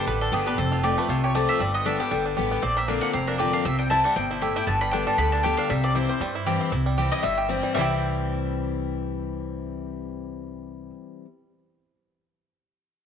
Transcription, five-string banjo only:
Already playing: G3 D4
0.07 B3
0.22 D4
0.33 G4
0.47 D4
0.58 C4
0.72 F4
0.84 G4
0.98 A3
1.09 F4
1.24 G4
1.35 A3
1.49 F4
1.60 G3
1.75 B3
1.86 D4
2.00 B3
2.11 G3
2.26 D4
2.37 G4
2.51 B3
2.63 C4
2.77 A#3
2.88 D4
3.03 A#3
3.14 C4
3.28 D4
3.40 G4
3.54 D4
3.65 C4
3.79 G3
3.91 E4
4.05 G3
4.16 C4
4.31 E4
4.42 G4
4.56 E4
4.67 B3
4.82 G3
4.93 D4
5.07 G3
5.19 B3
5.33 D4
5.44 G4
5.58 D4
5.70 G3
5.84 C4
5.95 E4
6.09 C4
6.21 G3
6.35 E4
6.47 G4
6.61 C4
6.72 E4
6.86 G3
6.98 G4
7.12 E4
7.23 G3
7.38 G4
7.49 E4
7.63 G3
7.75 G3 C4 E4
7.81 G4

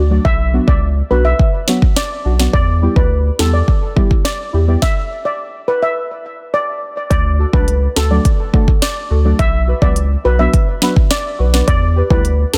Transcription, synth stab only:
0.10 F#3 A3 D4 F#4
0.53 F#3 B3 D4 F#4
1.10 F#3 B3 D4 F#4
1.67 F#3 B3 D4 F#4
2.24 D4 F#4
2.39 F#3 B3 D4 F#4
2.82 G3 B3 E4 G4
3.39 G3 B3 E4 G4
3.96 G3 B3 E4 G4
4.53 E4 G4
4.67 G3 B3 E4 G4
7.39 F#4 A4
7.53 F#3 A3 D4 F#4 A4
7.96 F#4 A4
8.10 F#3 A3 D4 F#4 A4
8.53 F#3 A3 D4 F#4 A4
9.10 F#4 A4
9.24 F#3 A3 D4 F#4 A4
9.67 F#4 B4
9.81 F#3 B3 D4 F#4 B4
10.24 F#4 B4
10.39 F#3 B3 D4 F#4 B4
10.81 F#3 B3 D4 F#4 B4
11.39 F#4 B4
11.53 F#3 B3 D4 F#4 B4
11.96 G4 B4
12.10 G3 B3 E4 G4 B4
12.53 G4 B4

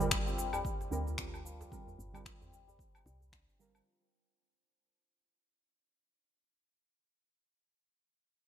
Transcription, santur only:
Already playing: F3 C4 D4
0.00 G3
0.26 C4
0.53 G3
0.91 G3
1.18 D4
1.45 F3
1.71 G3
2.14 G3
2.41 C4
2.67 G3
3.05 G3
3.33 D4
3.59 F3

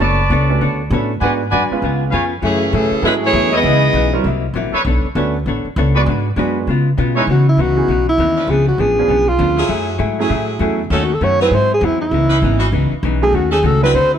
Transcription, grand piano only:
0.50 A3 C#4 D4 F#4 B4
0.92 A3 C#4 D4 F#4 B4
1.23 G#3 B3 D4 F#4 B4
1.71 G#3 B3 C#4 F4 B4
3.04 F#3 C#4 E4 G#4 A4
3.65 E3 B3 C#4 D#4 G#4
4.13 G3 C4 E4 F#4 A#4
5.16 A3 C#4 D4 F#4 B4
5.96 G#3 B3 D4 F#4 D5
6.38 G#3 B3 D4 F#4 B4
7.16 G#3 C#4 D#4 E4 C#5
7.77 E3 B3 C#4 D#4 G#4
8.99 F3 B3 C#4 D4 G#4
10.19 F#3 A3 C#4 E4 G#4
10.61 F#3 A3 C#4 E4 A4
11.42 F#3 C4 D#4 E4 G#4
13.22 F#3 A3 C#4 D#4 A4
13.82 F#3 C4 D4 E4 B4

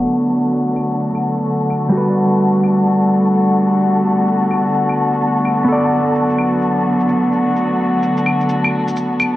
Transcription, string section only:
Already playing: D3 F#3 A3 B3 F#4
1.93 G3 B3
5.69 F#3

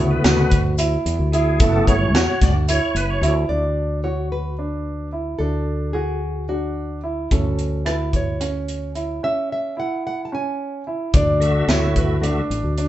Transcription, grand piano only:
Already playing: E4
0.24 F#4
0.78 E4
1.34 E4
1.61 E4
2.15 F#4
2.68 E4
3.23 E4
3.50 D4
4.04 F#4
4.59 D4
5.13 E4
5.40 D4
5.95 F#4
6.49 D4
7.04 E4
7.32 C#4
7.85 E4
8.41 C#4
8.95 E4
9.23 C#4
9.77 E4
10.32 C#4
10.87 E4
11.14 D4
11.68 E4
12.23 D4
12.78 D4

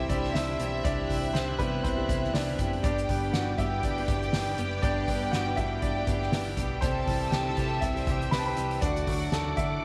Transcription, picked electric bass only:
0.10 C2
0.35 C2
0.59 B1
0.85 C2
1.10 C2
1.34 C2
1.59 C3
1.85 C2
2.09 C2
2.34 C2
2.59 F#1
2.84 G1
3.09 G1
3.34 G1
3.59 G2
3.83 G1
4.08 G1
4.33 G1
4.58 F#1
4.83 G1
5.08 G1
5.33 G1
5.57 G2
5.82 G1
6.07 G1
6.32 G1
6.57 B1
6.82 C2
7.07 C2
7.32 C2
7.57 C3
7.82 C2
8.07 C2
8.32 C2
8.57 C2
8.82 D2
9.07 D2
9.32 D2
9.57 D3

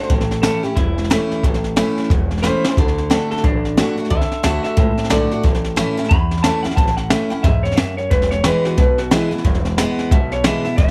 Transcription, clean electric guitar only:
0.42 A4
0.63 G4
0.76 E4
2.43 C5
3.10 A4
3.31 A4
3.44 D4
4.11 E5
4.44 E5
4.64 E5
5.11 D5
6.09 B5
6.43 A5
6.63 F#5
6.76 A5
6.97 F#5
7.10 E5
7.30 F#5
7.43 E5
7.63 C#5
7.76 E5
7.97 C#5
8.10 B4
8.31 C#5
8.45 B4
8.65 F#4
8.78 B4
8.99 F#4
9.11 E4
9.78 F#5
10.11 E5
10.32 C#5
10.45 E5
10.65 E5
10.77 E5

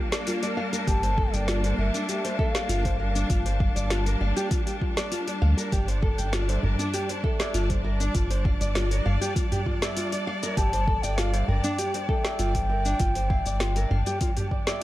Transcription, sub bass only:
0.87 G1
1.33 G1
1.78 G1
2.69 G1
3.30 G1
3.76 G1
4.21 G1
5.42 D2
5.72 G1
6.18 G1
6.63 G1
7.54 G1
8.15 G1
8.61 G1
9.06 G1
10.57 G1
11.03 G1
11.48 G1
12.39 G1
13.00 G1
13.46 G1
13.91 G1

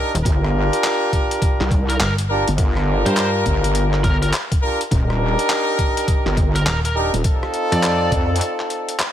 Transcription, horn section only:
Already playing: D4 D#4 G4 A#4
0.25 D4 F4 G4 A#4
2.29 D4 F4 G4 A#4
2.58 D4 F4 G4 A#4
4.63 D4 F4 G4 A#4
4.92 D4 D#4 G4 A#4
6.95 D4 D#4 G4 A#4
7.24 C4 D#4 F4 A4

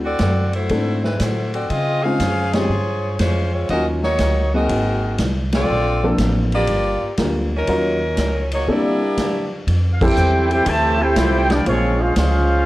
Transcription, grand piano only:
0.70 A3 C4 D4 E4 A4
2.05 G#3 C4 C#4 D#4 F4
2.54 G#3 C4 C#4 D#4 G4
3.70 F#3 A#3 C#4 D#4 F4
4.54 F#3 A#3 C4 D#4 G#4
6.03 F3 A#3 C4 D4 A4
7.19 G3 A#3 D4 F4 A#4
7.68 F#3 C#4 D#4 F4 A#4
8.68 C3 G3 A#3 D4 E4 A4
10.02 G3 C4 E4 G4 A4
11.17 G3 C4 E4 F4 G4
11.66 A#3 C#4 F4 G#4 C5

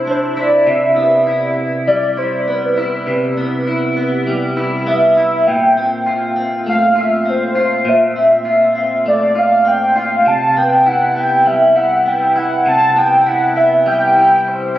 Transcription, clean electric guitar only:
Already playing: C3 E4
0.07 D4
0.37 E4
0.67 C3
0.96 B3
1.27 E4
1.88 G3
2.17 E4
2.48 B3
2.77 E4
3.07 C3
3.37 B3
3.67 E4
3.97 B3
4.27 G3
4.57 E4
4.87 B3
5.17 E4
5.48 A#2
5.77 C4
6.06 F4
6.36 C4
6.66 A3
6.96 F4
7.25 C4
7.55 F4
7.85 A#2
8.16 C4
8.45 F4
8.75 C4
9.06 A3
9.35 F4
9.65 C4
9.96 F4
10.26 C3
10.56 B3
10.86 E4
11.16 B3
11.46 G3
11.76 E4
12.06 B3
12.36 E4
12.66 C3
12.96 B3
13.26 E4
13.56 B3
13.86 G3
14.16 E4

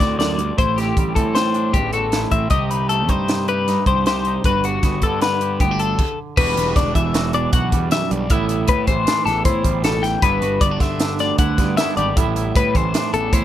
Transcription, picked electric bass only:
0.00 D2
0.58 A1
0.97 A1
1.16 A2
1.74 A1
2.32 A1
2.51 C2
3.09 G2
3.86 C2
4.45 G1
4.83 G1
5.02 G2
5.60 G1
6.37 E1
6.56 E1
6.76 E1
6.96 E1
7.53 B1
7.72 E2
8.12 B1
8.30 A1
8.69 A2
8.87 A1
9.26 A1
9.45 A2
9.65 A1
10.23 G1
10.42 G1
10.61 G1
10.80 G1
11.39 D2
11.58 G2
11.97 G#1
12.17 A1
12.56 A2
12.75 A1
13.14 A1
13.33 A2

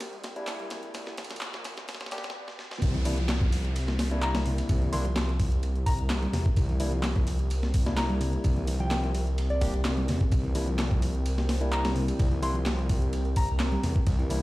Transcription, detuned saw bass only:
Already playing: C2
0.94 C2
2.82 C2
4.69 C2
6.33 E2
6.57 C2
8.44 C2
10.08 E2
10.32 C2
12.19 C2
13.83 E2
14.07 C2

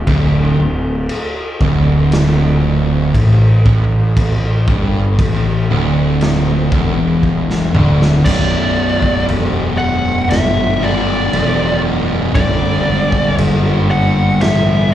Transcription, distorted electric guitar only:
0.08 D2
0.60 D2
1.62 D2
3.15 A2
3.66 A2
4.69 G2
5.19 A2
5.70 D2
6.73 E2
7.75 D2
8.25 B1 F#2 B2
10.81 B1 F#2 B2
11.32 B1 F#2 B2
12.35 G2 D3 G3

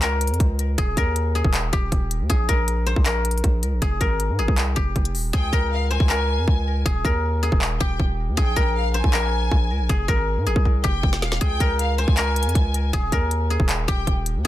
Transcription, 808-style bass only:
Already playing: C#2
0.31 F2
0.40 C#2
0.78 D#1
0.97 D#2
1.44 D#1
1.73 D#1
1.92 D#1
2.20 D#2
2.30 A#1
2.49 A#1
2.96 A#1
3.44 A#1
3.63 C#2
3.72 A#1
3.82 F1
4.01 G#1
4.29 G#2
4.39 G#1
4.48 C2
4.77 F1
4.96 F1
5.15 D#1
5.34 C#2
5.53 C#2
6.00 C#2
6.38 F2
6.48 C#2
6.86 D#1
7.05 D#2
7.52 D#1
7.81 D#1
8.00 D#1
8.28 D#2
8.38 A#1
8.57 A#1
9.04 A#1
9.52 A#1
9.71 C#2
9.80 A#1
9.89 F1
10.08 G#1
10.37 G#2
10.46 G#1
10.56 C2
10.84 F1
11.03 F1
11.22 D#1
11.41 C#2
11.60 C#2
12.08 C#2
12.46 F2
12.55 C#2
12.93 D#1
13.12 D#2
13.60 D#1
13.88 D#1
14.07 D#1
14.36 D#2

